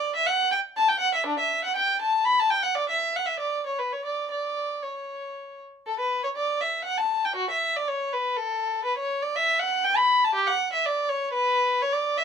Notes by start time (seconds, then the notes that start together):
Already playing: D5
0.16 E5
0.27 F#5
0.52 G5
0.77 A5
0.89 G5
1.00 F#5
1.14 E5
1.26 D4
1.39 E5
1.64 F#5
1.76 G5
2.02 A5
2.25 B5
2.40 A5
2.50 G5
2.63 F#5
2.75 D5
2.89 E5
3.16 F#5
3.26 E5
3.40 D5
3.66 C#5
3.79 B4
3.93 C#5
4.05 D5
4.30 D5
4.82 C#5
5.87 A4
5.99 B4
6.23 C#5
6.37 D5
6.61 E5
6.85 F#5
6.98 A5
7.25 G5
7.36 F#4
7.50 E5
7.76 D5
7.88 C#5
8.12 B4
8.37 A4
8.85 B4
8.98 C#5
9.22 D5
9.36 E5
9.59 F#5
9.84 G5
9.97 B5
10.24 A5
10.35 G4
10.47 F#5
10.73 E5
10.86 D5
11.09 C#5
11.33 B4
11.82 C#5
11.93 D5
12.17 E5